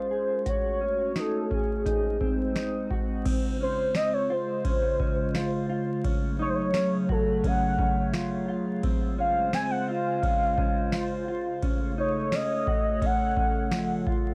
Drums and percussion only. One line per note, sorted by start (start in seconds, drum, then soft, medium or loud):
0.46 kick medium
0.46 closed hi-hat medium
1.16 snare medium
1.16 closed hi-hat medium
1.51 kick medium
1.86 kick medium
1.86 closed hi-hat medium
2.21 kick medium
2.56 snare medium
2.56 closed hi-hat soft
2.91 kick medium
3.26 kick loud
3.26 crash medium
3.26 ride medium
3.95 snare loud
3.95 ride soft
3.95 tambourine medium
4.65 kick medium
4.65 ride medium
5.00 kick medium
5.35 snare loud
5.35 ride soft
5.35 tambourine medium
6.04 kick medium
6.04 ride soft
6.74 snare loud
6.74 ride soft
6.74 tambourine medium
7.09 kick medium
7.44 kick loud
7.44 ride medium
7.79 kick loud
8.14 snare loud
8.14 ride soft
8.14 tambourine medium
8.83 kick loud
8.83 ride medium
9.53 snare loud
9.53 ride medium
9.53 tambourine medium
10.23 kick loud
10.23 ride medium
10.58 kick medium
10.92 snare loud
10.92 ride soft
10.92 tambourine medium
11.63 kick medium
11.63 ride medium
12.32 snare medium
12.32 ride medium
12.32 tambourine medium
12.67 kick medium
13.02 kick medium
13.02 ride medium
13.37 kick loud
13.72 snare loud
13.72 ride soft
13.72 tambourine medium
14.07 kick loud